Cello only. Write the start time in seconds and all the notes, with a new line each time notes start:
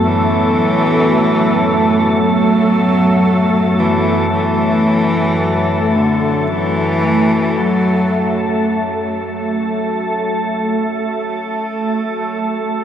0.03 E3
2.16 F#3
3.79 E3
4.32 E3
5.96 D3
6.48 E3
7.58 F#3
8.62 F#3
10.73 A3